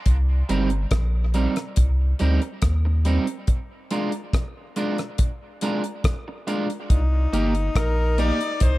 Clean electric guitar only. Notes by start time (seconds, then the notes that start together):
0.49 G3 C4 D#4 A#4
1.34 G3 C4 D#4 A#4
2.20 G3 C4 D#4 A#4
2.42 muted clean electric guitar stroke
2.85 muted clean electric guitar stroke
3.05 G3 C4 D#4 A#4
3.91 G#3 D4 F4 A#4
4.76 G#3 D4 F4 A#4
5.62 G#3 D4 F4 A#4
6.28 muted clean electric guitar stroke
6.47 G#3 D4 F4 A#4
7.33 A#3 D#4 G4 A#4
8.18 A#3 D#4 G4 A#4